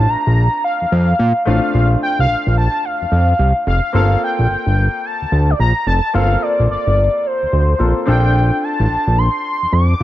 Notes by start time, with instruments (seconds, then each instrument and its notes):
Already playing: grand piano A3 C4 D4 F4, soft synth lead A5
0.09 analog synth bass A#1, soft synth lead A#5
0.27 analog synth bass A#1
0.64 soft synth lead F5
0.82 analog synth bass F2
0.92 analog synth bass F2
1.19 analog synth bass A#2
1.45 analog synth bass A1, grand piano A3 C4 D4 F4, soft synth lead F5
1.74 analog synth bass A#1
2.03 soft synth lead G5
2.19 analog synth bass C2, soft synth lead F5
2.29 analog synth bass A#1
2.47 analog synth bass A#1
2.58 soft synth lead A5
2.85 soft synth lead F5
3.02 analog synth bass F2
3.12 analog synth bass F2
3.39 analog synth bass C2
3.67 analog synth bass F1, soft synth lead F5
3.93 analog synth bass G1, grand piano A#3 C4 F4 A4, soft synth lead F5
4.24 soft synth lead G5
4.39 analog synth bass A#1
4.49 analog synth bass G1
4.66 analog synth bass G1
5.06 soft synth lead A5
5.22 analog synth bass D2
5.32 analog synth bass D2
5.50 soft synth lead D5
5.60 analog synth bass A#1, soft synth lead A#5
5.87 analog synth bass F1, soft synth lead A5
6.14 analog synth bass G1, grand piano A#3 C4 F4 A4, soft synth lead F5
6.42 soft synth lead D5
6.59 analog synth bass A#1
6.70 analog synth bass G1, soft synth lead D5
6.87 analog synth bass G1
7.26 soft synth lead C5
7.43 analog synth bass D2
7.53 analog synth bass D2
7.78 analog synth bass A#1, grand piano A#3 C4 F4 A4
8.06 analog synth bass A#1, grand piano C4 D4 F4 A4, soft synth lead G5
8.64 soft synth lead A5
8.80 analog synth bass A1
8.90 analog synth bass A#1
9.07 analog synth bass A#1
9.18 soft synth lead C6
9.62 analog synth bass F2
9.72 analog synth bass F2, soft synth lead D6